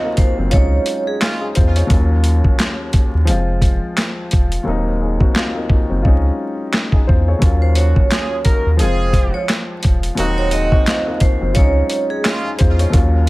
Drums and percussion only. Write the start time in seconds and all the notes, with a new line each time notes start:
0.17 kick, closed hi-hat
0.51 kick, closed hi-hat
0.86 closed hi-hat
1.21 snare, clap, closed hi-hat
1.55 kick, closed hi-hat
1.76 closed hi-hat
1.90 kick, closed hi-hat
2.24 closed hi-hat
2.44 kick
2.59 snare, clap, closed hi-hat
2.93 kick, closed hi-hat
3.27 closed hi-hat
3.62 kick, closed hi-hat
3.97 snare, clap, closed hi-hat
4.31 kick, closed hi-hat
4.52 closed hi-hat
5.20 kick
5.36 snare, clap
5.70 kick
6.05 kick
6.74 snare, clap
6.92 kick
7.09 kick
7.42 kick, closed hi-hat
7.75 closed hi-hat
7.96 kick
8.11 snare, clap, closed hi-hat
8.45 kick, closed hi-hat
8.79 closed hi-hat
9.13 kick, closed hi-hat
9.49 snare, clap, closed hi-hat
9.83 kick, closed hi-hat
10.03 closed hi-hat
10.17 closed hi-hat
10.51 closed hi-hat
10.72 kick
10.87 snare, clap, closed hi-hat
11.20 kick, closed hi-hat
11.55 kick, closed hi-hat
11.90 closed hi-hat
12.25 snare, clap, closed hi-hat
12.59 kick, closed hi-hat
12.79 closed hi-hat
12.93 kick, closed hi-hat